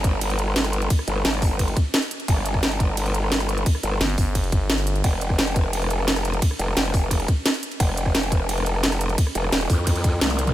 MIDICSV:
0, 0, Header, 1, 4, 480
1, 0, Start_track
1, 0, Tempo, 344828
1, 1257, Time_signature, 4, 2, 24, 8
1, 14667, End_track
2, 0, Start_track
2, 0, Title_t, "FM bass"
2, 0, Program_c, 0, 39
2, 5578, Note_on_c, 0, 31, 99
2, 5798, Note_off_c, 0, 31, 0
2, 5817, Note_on_c, 0, 31, 97
2, 6278, Note_off_c, 0, 31, 0
2, 6297, Note_on_c, 0, 31, 100
2, 6998, Note_off_c, 0, 31, 0
2, 14667, End_track
3, 0, Start_track
3, 0, Title_t, "Wobble bass"
3, 0, Program_c, 1, 39
3, 0, Note_on_c, 1, 31, 99
3, 1238, Note_off_c, 1, 31, 0
3, 1496, Note_on_c, 1, 31, 103
3, 1718, Note_off_c, 1, 31, 0
3, 1737, Note_on_c, 1, 31, 99
3, 2438, Note_off_c, 1, 31, 0
3, 3178, Note_on_c, 1, 31, 105
3, 5078, Note_off_c, 1, 31, 0
3, 5336, Note_on_c, 1, 31, 99
3, 5557, Note_off_c, 1, 31, 0
3, 7017, Note_on_c, 1, 29, 101
3, 8918, Note_off_c, 1, 29, 0
3, 9177, Note_on_c, 1, 29, 103
3, 9398, Note_off_c, 1, 29, 0
3, 9416, Note_on_c, 1, 29, 98
3, 10118, Note_off_c, 1, 29, 0
3, 10858, Note_on_c, 1, 29, 105
3, 12758, Note_off_c, 1, 29, 0
3, 13017, Note_on_c, 1, 29, 103
3, 13238, Note_off_c, 1, 29, 0
3, 13257, Note_on_c, 1, 27, 99
3, 13478, Note_off_c, 1, 27, 0
3, 13497, Note_on_c, 1, 41, 102
3, 14198, Note_off_c, 1, 41, 0
3, 14219, Note_on_c, 1, 36, 96
3, 14667, Note_off_c, 1, 36, 0
3, 14667, End_track
4, 0, Start_track
4, 0, Title_t, "Drums"
4, 57, Note_on_c, 9, 36, 111
4, 58, Note_on_c, 9, 42, 73
4, 197, Note_off_c, 9, 36, 0
4, 197, Note_off_c, 9, 42, 0
4, 298, Note_on_c, 9, 42, 101
4, 298, Note_on_c, 9, 51, 78
4, 418, Note_off_c, 9, 42, 0
4, 418, Note_on_c, 9, 42, 40
4, 437, Note_off_c, 9, 51, 0
4, 539, Note_off_c, 9, 42, 0
4, 539, Note_on_c, 9, 42, 70
4, 659, Note_on_c, 9, 37, 35
4, 678, Note_off_c, 9, 42, 0
4, 779, Note_on_c, 9, 38, 116
4, 779, Note_on_c, 9, 42, 95
4, 779, Note_on_c, 9, 51, 75
4, 798, Note_off_c, 9, 37, 0
4, 898, Note_off_c, 9, 42, 0
4, 898, Note_on_c, 9, 37, 49
4, 898, Note_on_c, 9, 42, 38
4, 918, Note_off_c, 9, 38, 0
4, 918, Note_off_c, 9, 51, 0
4, 1018, Note_off_c, 9, 42, 0
4, 1018, Note_on_c, 9, 42, 72
4, 1037, Note_off_c, 9, 37, 0
4, 1138, Note_off_c, 9, 42, 0
4, 1138, Note_on_c, 9, 42, 38
4, 1257, Note_off_c, 9, 42, 0
4, 1257, Note_on_c, 9, 36, 119
4, 1257, Note_on_c, 9, 42, 99
4, 1257, Note_on_c, 9, 51, 74
4, 1378, Note_on_c, 9, 37, 36
4, 1396, Note_off_c, 9, 42, 0
4, 1396, Note_off_c, 9, 51, 0
4, 1397, Note_off_c, 9, 36, 0
4, 1498, Note_on_c, 9, 42, 68
4, 1517, Note_off_c, 9, 37, 0
4, 1618, Note_on_c, 9, 37, 35
4, 1638, Note_off_c, 9, 42, 0
4, 1737, Note_on_c, 9, 38, 126
4, 1737, Note_on_c, 9, 42, 93
4, 1737, Note_on_c, 9, 51, 74
4, 1758, Note_off_c, 9, 37, 0
4, 1857, Note_off_c, 9, 42, 0
4, 1857, Note_on_c, 9, 42, 37
4, 1877, Note_off_c, 9, 38, 0
4, 1877, Note_off_c, 9, 51, 0
4, 1977, Note_on_c, 9, 36, 111
4, 1977, Note_on_c, 9, 46, 82
4, 1997, Note_off_c, 9, 42, 0
4, 2116, Note_off_c, 9, 36, 0
4, 2116, Note_off_c, 9, 46, 0
4, 2217, Note_on_c, 9, 36, 63
4, 2217, Note_on_c, 9, 42, 92
4, 2217, Note_on_c, 9, 51, 71
4, 2337, Note_off_c, 9, 42, 0
4, 2337, Note_on_c, 9, 42, 37
4, 2356, Note_off_c, 9, 36, 0
4, 2357, Note_off_c, 9, 51, 0
4, 2457, Note_on_c, 9, 36, 112
4, 2458, Note_off_c, 9, 42, 0
4, 2458, Note_on_c, 9, 42, 67
4, 2596, Note_off_c, 9, 36, 0
4, 2598, Note_off_c, 9, 42, 0
4, 2698, Note_on_c, 9, 38, 127
4, 2698, Note_on_c, 9, 42, 92
4, 2698, Note_on_c, 9, 51, 74
4, 2819, Note_off_c, 9, 42, 0
4, 2819, Note_on_c, 9, 42, 38
4, 2837, Note_off_c, 9, 38, 0
4, 2837, Note_off_c, 9, 51, 0
4, 2939, Note_off_c, 9, 42, 0
4, 2939, Note_on_c, 9, 42, 71
4, 3059, Note_off_c, 9, 42, 0
4, 3059, Note_on_c, 9, 42, 38
4, 3178, Note_off_c, 9, 42, 0
4, 3178, Note_on_c, 9, 36, 124
4, 3178, Note_on_c, 9, 42, 97
4, 3178, Note_on_c, 9, 51, 73
4, 3298, Note_on_c, 9, 37, 36
4, 3317, Note_off_c, 9, 36, 0
4, 3317, Note_off_c, 9, 42, 0
4, 3317, Note_off_c, 9, 51, 0
4, 3418, Note_on_c, 9, 42, 67
4, 3437, Note_off_c, 9, 37, 0
4, 3537, Note_on_c, 9, 36, 66
4, 3537, Note_on_c, 9, 37, 35
4, 3557, Note_off_c, 9, 42, 0
4, 3658, Note_on_c, 9, 38, 127
4, 3658, Note_on_c, 9, 42, 87
4, 3658, Note_on_c, 9, 51, 72
4, 3676, Note_off_c, 9, 36, 0
4, 3677, Note_off_c, 9, 37, 0
4, 3779, Note_off_c, 9, 42, 0
4, 3779, Note_on_c, 9, 42, 36
4, 3797, Note_off_c, 9, 38, 0
4, 3797, Note_off_c, 9, 51, 0
4, 3897, Note_on_c, 9, 36, 113
4, 3899, Note_off_c, 9, 42, 0
4, 3899, Note_on_c, 9, 42, 69
4, 4036, Note_off_c, 9, 36, 0
4, 4038, Note_off_c, 9, 42, 0
4, 4137, Note_on_c, 9, 42, 95
4, 4137, Note_on_c, 9, 51, 74
4, 4258, Note_off_c, 9, 42, 0
4, 4258, Note_on_c, 9, 42, 36
4, 4276, Note_off_c, 9, 51, 0
4, 4377, Note_off_c, 9, 42, 0
4, 4377, Note_on_c, 9, 42, 66
4, 4496, Note_on_c, 9, 37, 34
4, 4516, Note_off_c, 9, 42, 0
4, 4617, Note_on_c, 9, 38, 121
4, 4617, Note_on_c, 9, 42, 93
4, 4617, Note_on_c, 9, 51, 70
4, 4635, Note_off_c, 9, 37, 0
4, 4738, Note_off_c, 9, 42, 0
4, 4738, Note_on_c, 9, 37, 49
4, 4738, Note_on_c, 9, 42, 38
4, 4756, Note_off_c, 9, 38, 0
4, 4756, Note_off_c, 9, 51, 0
4, 4857, Note_off_c, 9, 42, 0
4, 4857, Note_on_c, 9, 42, 67
4, 4877, Note_off_c, 9, 37, 0
4, 4977, Note_off_c, 9, 42, 0
4, 4977, Note_on_c, 9, 42, 36
4, 5097, Note_off_c, 9, 42, 0
4, 5097, Note_on_c, 9, 36, 124
4, 5097, Note_on_c, 9, 42, 94
4, 5097, Note_on_c, 9, 51, 77
4, 5217, Note_on_c, 9, 37, 35
4, 5236, Note_off_c, 9, 36, 0
4, 5236, Note_off_c, 9, 42, 0
4, 5236, Note_off_c, 9, 51, 0
4, 5337, Note_on_c, 9, 42, 64
4, 5357, Note_off_c, 9, 37, 0
4, 5458, Note_on_c, 9, 37, 34
4, 5476, Note_off_c, 9, 42, 0
4, 5578, Note_on_c, 9, 38, 124
4, 5578, Note_on_c, 9, 42, 89
4, 5578, Note_on_c, 9, 51, 70
4, 5597, Note_off_c, 9, 37, 0
4, 5698, Note_off_c, 9, 42, 0
4, 5698, Note_on_c, 9, 42, 35
4, 5717, Note_off_c, 9, 38, 0
4, 5717, Note_off_c, 9, 51, 0
4, 5817, Note_on_c, 9, 36, 113
4, 5817, Note_on_c, 9, 46, 87
4, 5837, Note_off_c, 9, 42, 0
4, 5956, Note_off_c, 9, 36, 0
4, 5956, Note_off_c, 9, 46, 0
4, 6057, Note_on_c, 9, 36, 61
4, 6058, Note_on_c, 9, 42, 89
4, 6058, Note_on_c, 9, 51, 73
4, 6177, Note_off_c, 9, 42, 0
4, 6177, Note_on_c, 9, 42, 37
4, 6196, Note_off_c, 9, 36, 0
4, 6197, Note_off_c, 9, 51, 0
4, 6297, Note_off_c, 9, 42, 0
4, 6297, Note_on_c, 9, 36, 110
4, 6297, Note_on_c, 9, 42, 63
4, 6436, Note_off_c, 9, 36, 0
4, 6436, Note_off_c, 9, 42, 0
4, 6537, Note_on_c, 9, 38, 125
4, 6537, Note_on_c, 9, 42, 85
4, 6537, Note_on_c, 9, 51, 74
4, 6656, Note_off_c, 9, 42, 0
4, 6656, Note_on_c, 9, 42, 34
4, 6676, Note_off_c, 9, 38, 0
4, 6676, Note_off_c, 9, 51, 0
4, 6777, Note_off_c, 9, 42, 0
4, 6777, Note_on_c, 9, 42, 67
4, 6897, Note_off_c, 9, 42, 0
4, 6897, Note_on_c, 9, 42, 36
4, 7017, Note_on_c, 9, 36, 117
4, 7018, Note_off_c, 9, 42, 0
4, 7018, Note_on_c, 9, 42, 93
4, 7018, Note_on_c, 9, 51, 77
4, 7138, Note_on_c, 9, 37, 33
4, 7156, Note_off_c, 9, 36, 0
4, 7157, Note_off_c, 9, 42, 0
4, 7157, Note_off_c, 9, 51, 0
4, 7258, Note_on_c, 9, 42, 65
4, 7277, Note_off_c, 9, 37, 0
4, 7377, Note_on_c, 9, 36, 60
4, 7378, Note_on_c, 9, 37, 32
4, 7397, Note_off_c, 9, 42, 0
4, 7498, Note_on_c, 9, 38, 121
4, 7498, Note_on_c, 9, 42, 91
4, 7498, Note_on_c, 9, 51, 73
4, 7516, Note_off_c, 9, 36, 0
4, 7517, Note_off_c, 9, 37, 0
4, 7618, Note_off_c, 9, 42, 0
4, 7618, Note_on_c, 9, 42, 36
4, 7637, Note_off_c, 9, 38, 0
4, 7637, Note_off_c, 9, 51, 0
4, 7737, Note_on_c, 9, 36, 109
4, 7739, Note_off_c, 9, 42, 0
4, 7739, Note_on_c, 9, 42, 69
4, 7876, Note_off_c, 9, 36, 0
4, 7879, Note_off_c, 9, 42, 0
4, 7980, Note_on_c, 9, 42, 91
4, 7980, Note_on_c, 9, 51, 78
4, 8100, Note_off_c, 9, 42, 0
4, 8100, Note_on_c, 9, 42, 36
4, 8119, Note_off_c, 9, 51, 0
4, 8220, Note_off_c, 9, 42, 0
4, 8220, Note_on_c, 9, 42, 65
4, 8339, Note_on_c, 9, 37, 33
4, 8359, Note_off_c, 9, 42, 0
4, 8459, Note_on_c, 9, 38, 124
4, 8459, Note_on_c, 9, 42, 90
4, 8459, Note_on_c, 9, 51, 77
4, 8478, Note_off_c, 9, 37, 0
4, 8580, Note_off_c, 9, 42, 0
4, 8580, Note_on_c, 9, 37, 47
4, 8580, Note_on_c, 9, 42, 35
4, 8599, Note_off_c, 9, 38, 0
4, 8599, Note_off_c, 9, 51, 0
4, 8699, Note_off_c, 9, 42, 0
4, 8699, Note_on_c, 9, 42, 67
4, 8719, Note_off_c, 9, 37, 0
4, 8820, Note_off_c, 9, 42, 0
4, 8820, Note_on_c, 9, 42, 36
4, 8937, Note_on_c, 9, 36, 116
4, 8939, Note_off_c, 9, 42, 0
4, 8939, Note_on_c, 9, 42, 98
4, 8939, Note_on_c, 9, 51, 81
4, 9060, Note_on_c, 9, 37, 33
4, 9077, Note_off_c, 9, 36, 0
4, 9078, Note_off_c, 9, 42, 0
4, 9078, Note_off_c, 9, 51, 0
4, 9180, Note_on_c, 9, 42, 71
4, 9199, Note_off_c, 9, 37, 0
4, 9300, Note_on_c, 9, 37, 31
4, 9319, Note_off_c, 9, 42, 0
4, 9420, Note_on_c, 9, 38, 117
4, 9420, Note_on_c, 9, 42, 93
4, 9420, Note_on_c, 9, 51, 78
4, 9439, Note_off_c, 9, 37, 0
4, 9540, Note_off_c, 9, 42, 0
4, 9540, Note_on_c, 9, 42, 36
4, 9559, Note_off_c, 9, 38, 0
4, 9559, Note_off_c, 9, 51, 0
4, 9657, Note_on_c, 9, 36, 104
4, 9659, Note_on_c, 9, 46, 88
4, 9679, Note_off_c, 9, 42, 0
4, 9796, Note_off_c, 9, 36, 0
4, 9799, Note_off_c, 9, 46, 0
4, 9897, Note_on_c, 9, 36, 59
4, 9899, Note_on_c, 9, 42, 98
4, 9899, Note_on_c, 9, 51, 78
4, 10019, Note_off_c, 9, 42, 0
4, 10019, Note_on_c, 9, 42, 36
4, 10036, Note_off_c, 9, 36, 0
4, 10038, Note_off_c, 9, 51, 0
4, 10138, Note_on_c, 9, 36, 106
4, 10139, Note_off_c, 9, 42, 0
4, 10139, Note_on_c, 9, 42, 65
4, 10277, Note_off_c, 9, 36, 0
4, 10278, Note_off_c, 9, 42, 0
4, 10378, Note_on_c, 9, 38, 115
4, 10378, Note_on_c, 9, 42, 94
4, 10378, Note_on_c, 9, 51, 79
4, 10499, Note_off_c, 9, 42, 0
4, 10499, Note_on_c, 9, 42, 38
4, 10518, Note_off_c, 9, 38, 0
4, 10518, Note_off_c, 9, 51, 0
4, 10620, Note_off_c, 9, 42, 0
4, 10620, Note_on_c, 9, 42, 67
4, 10740, Note_off_c, 9, 42, 0
4, 10740, Note_on_c, 9, 42, 37
4, 10858, Note_on_c, 9, 36, 113
4, 10859, Note_off_c, 9, 42, 0
4, 10859, Note_on_c, 9, 42, 98
4, 10859, Note_on_c, 9, 51, 79
4, 10980, Note_on_c, 9, 37, 34
4, 10997, Note_off_c, 9, 36, 0
4, 10999, Note_off_c, 9, 42, 0
4, 10999, Note_off_c, 9, 51, 0
4, 11100, Note_on_c, 9, 42, 70
4, 11119, Note_off_c, 9, 37, 0
4, 11218, Note_on_c, 9, 36, 60
4, 11221, Note_on_c, 9, 37, 34
4, 11239, Note_off_c, 9, 42, 0
4, 11340, Note_on_c, 9, 38, 115
4, 11340, Note_on_c, 9, 42, 96
4, 11340, Note_on_c, 9, 51, 78
4, 11357, Note_off_c, 9, 36, 0
4, 11360, Note_off_c, 9, 37, 0
4, 11460, Note_off_c, 9, 42, 0
4, 11460, Note_on_c, 9, 42, 38
4, 11480, Note_off_c, 9, 38, 0
4, 11480, Note_off_c, 9, 51, 0
4, 11578, Note_on_c, 9, 36, 107
4, 11580, Note_off_c, 9, 42, 0
4, 11580, Note_on_c, 9, 42, 74
4, 11717, Note_off_c, 9, 36, 0
4, 11719, Note_off_c, 9, 42, 0
4, 11819, Note_on_c, 9, 42, 97
4, 11819, Note_on_c, 9, 51, 77
4, 11939, Note_off_c, 9, 42, 0
4, 11939, Note_on_c, 9, 42, 37
4, 11958, Note_off_c, 9, 51, 0
4, 12060, Note_off_c, 9, 42, 0
4, 12060, Note_on_c, 9, 42, 69
4, 12180, Note_on_c, 9, 37, 33
4, 12199, Note_off_c, 9, 42, 0
4, 12298, Note_on_c, 9, 38, 112
4, 12298, Note_on_c, 9, 42, 95
4, 12298, Note_on_c, 9, 51, 81
4, 12319, Note_off_c, 9, 37, 0
4, 12419, Note_off_c, 9, 42, 0
4, 12419, Note_on_c, 9, 37, 46
4, 12419, Note_on_c, 9, 42, 39
4, 12438, Note_off_c, 9, 38, 0
4, 12438, Note_off_c, 9, 51, 0
4, 12539, Note_off_c, 9, 42, 0
4, 12539, Note_on_c, 9, 42, 72
4, 12558, Note_off_c, 9, 37, 0
4, 12659, Note_off_c, 9, 42, 0
4, 12659, Note_on_c, 9, 42, 39
4, 12778, Note_on_c, 9, 36, 111
4, 12779, Note_off_c, 9, 42, 0
4, 12779, Note_on_c, 9, 42, 103
4, 12779, Note_on_c, 9, 51, 81
4, 12899, Note_on_c, 9, 37, 36
4, 12917, Note_off_c, 9, 36, 0
4, 12918, Note_off_c, 9, 42, 0
4, 12918, Note_off_c, 9, 51, 0
4, 13018, Note_on_c, 9, 42, 73
4, 13039, Note_off_c, 9, 37, 0
4, 13138, Note_on_c, 9, 37, 34
4, 13157, Note_off_c, 9, 42, 0
4, 13258, Note_on_c, 9, 38, 118
4, 13258, Note_on_c, 9, 42, 99
4, 13258, Note_on_c, 9, 51, 80
4, 13277, Note_off_c, 9, 37, 0
4, 13378, Note_off_c, 9, 42, 0
4, 13378, Note_on_c, 9, 42, 39
4, 13397, Note_off_c, 9, 38, 0
4, 13397, Note_off_c, 9, 51, 0
4, 13498, Note_on_c, 9, 36, 101
4, 13498, Note_on_c, 9, 46, 85
4, 13518, Note_off_c, 9, 42, 0
4, 13637, Note_off_c, 9, 36, 0
4, 13638, Note_off_c, 9, 46, 0
4, 13737, Note_on_c, 9, 42, 100
4, 13737, Note_on_c, 9, 51, 80
4, 13738, Note_on_c, 9, 36, 59
4, 13858, Note_off_c, 9, 42, 0
4, 13858, Note_on_c, 9, 42, 39
4, 13877, Note_off_c, 9, 36, 0
4, 13877, Note_off_c, 9, 51, 0
4, 13978, Note_off_c, 9, 42, 0
4, 13978, Note_on_c, 9, 36, 104
4, 13978, Note_on_c, 9, 42, 70
4, 14117, Note_off_c, 9, 36, 0
4, 14117, Note_off_c, 9, 42, 0
4, 14218, Note_on_c, 9, 38, 119
4, 14218, Note_on_c, 9, 42, 100
4, 14218, Note_on_c, 9, 48, 62
4, 14218, Note_on_c, 9, 51, 79
4, 14338, Note_off_c, 9, 42, 0
4, 14338, Note_off_c, 9, 48, 0
4, 14338, Note_on_c, 9, 42, 39
4, 14338, Note_on_c, 9, 48, 62
4, 14357, Note_off_c, 9, 38, 0
4, 14357, Note_off_c, 9, 51, 0
4, 14458, Note_off_c, 9, 42, 0
4, 14458, Note_on_c, 9, 42, 73
4, 14477, Note_off_c, 9, 48, 0
4, 14579, Note_off_c, 9, 42, 0
4, 14579, Note_on_c, 9, 42, 39
4, 14579, Note_on_c, 9, 45, 86
4, 14667, Note_off_c, 9, 42, 0
4, 14667, Note_off_c, 9, 45, 0
4, 14667, End_track
0, 0, End_of_file